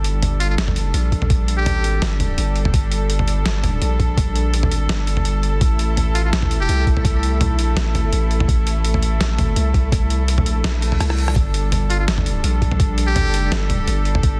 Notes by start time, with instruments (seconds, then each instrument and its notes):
Already playing: 808-style bass G1, cello section G3 D4 A4
0.04 closed hi-hat
0.22 closed hi-hat, mid tom
0.40 muted trumpet F4, closed hi-hat
0.49 muted trumpet F4
0.58 808-style bass G1, snare, closed hi-hat
0.68 mid tom
0.76 closed hi-hat
0.94 808-style bass A#1, closed hi-hat
1.12 kick, closed hi-hat
1.22 mid tom
1.30 kick, closed hi-hat
1.48 closed hi-hat
1.58 muted trumpet G4
1.66 808-style bass A1, closed hi-hat, mid tom
1.84 closed hi-hat
2.02 808-style bass G1, snare, closed hi-hat
2.20 closed hi-hat, mid tom
2.38 808-style bass G1, closed hi-hat
2.56 closed hi-hat
2.65 mid tom
2.74 808-style bass G1, kick, closed hi-hat
2.92 closed hi-hat
3.10 closed hi-hat
3.19 mid tom
3.28 closed hi-hat
3.45 808-style bass G1, snare, closed hi-hat
3.64 closed hi-hat, mid tom
3.81 808-style bass A#1, closed hi-hat
4.00 kick, closed hi-hat
4.17 kick, closed hi-hat, mid tom
4.36 closed hi-hat
4.54 808-style bass A1, closed hi-hat
4.63 mid tom
4.72 closed hi-hat
4.77 808-style bass G#1
4.89 808-style bass G1, snare, closed hi-hat
5.07 closed hi-hat
5.17 mid tom
5.25 closed hi-hat
5.43 closed hi-hat
5.61 808-style bass A1, cello section A3 E4, kick, closed hi-hat
5.79 closed hi-hat
5.97 closed hi-hat, mid tom
6.14 muted trumpet F4, closed hi-hat
6.24 muted trumpet F4
6.33 808-style bass A1, snare, closed hi-hat
6.42 mid tom
6.51 closed hi-hat
6.61 muted trumpet G4
6.69 808-style bass C2, closed hi-hat
6.87 kick, closed hi-hat
6.97 mid tom
7.05 kick, closed hi-hat
7.23 closed hi-hat
7.41 808-style bass B1, closed hi-hat, mid tom
7.59 closed hi-hat
7.65 808-style bass A#1
7.76 808-style bass A1, snare, closed hi-hat
7.95 closed hi-hat, mid tom
8.13 808-style bass A1, closed hi-hat
8.31 closed hi-hat
8.40 mid tom
8.48 808-style bass A1, kick, closed hi-hat
8.67 closed hi-hat
8.85 closed hi-hat
8.94 mid tom
9.03 closed hi-hat
9.20 808-style bass A1, snare, closed hi-hat
9.38 closed hi-hat, mid tom
9.56 808-style bass C2, closed hi-hat
9.74 kick, closed hi-hat
9.92 kick, closed hi-hat, mid tom
10.10 closed hi-hat
10.28 808-style bass B1, closed hi-hat
10.38 mid tom
10.46 closed hi-hat
10.52 808-style bass A#1
10.64 808-style bass A#1, snare, closed hi-hat, reverse cymbal
10.82 closed hi-hat
10.92 mid tom
11.00 808-style bass C2, cross-stick, closed hi-hat
11.10 cross-stick
11.18 closed hi-hat
11.28 cross-stick
11.36 808-style bass G1, cello section G3 D4 A4, kick, closed hi-hat
11.54 closed hi-hat
11.72 closed hi-hat, mid tom
11.90 muted trumpet F4, closed hi-hat
11.99 muted trumpet F4
12.08 808-style bass G1, snare, closed hi-hat
12.18 mid tom
12.26 closed hi-hat
12.44 808-style bass A#1, closed hi-hat
12.62 kick, closed hi-hat
12.71 mid tom
12.80 kick, closed hi-hat
12.98 closed hi-hat
13.07 muted trumpet G4
13.16 closed hi-hat, mid tom
13.34 closed hi-hat
13.51 808-style bass G1, snare, closed hi-hat
13.70 closed hi-hat, mid tom
13.87 808-style bass G1, closed hi-hat
14.05 closed hi-hat
14.15 mid tom
14.23 808-style bass G1, kick, closed hi-hat